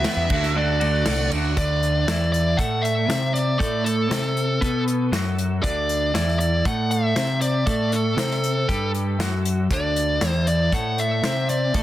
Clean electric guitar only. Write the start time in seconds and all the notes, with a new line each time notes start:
0.04 E3 G3 B3 F#4
0.30 D3 A3 D4 F#4
0.55 D3 A3 D4 F#4
0.80 D3 A3 D4 F#4
1.06 D3 A3 D4 F#4
1.33 A3 D4 F#4
1.57 D3
2.08 E3
2.59 A3
3.09 C4
3.59 A3
4.10 C4
4.61 B3
5.12 F#3
5.63 D3
6.14 E3
6.66 A3
7.16 C4
7.66 A3
8.18 C4
8.68 G3
9.20 F#3
9.71 D3
10.22 E3
10.73 A3
11.25 C4
11.75 A3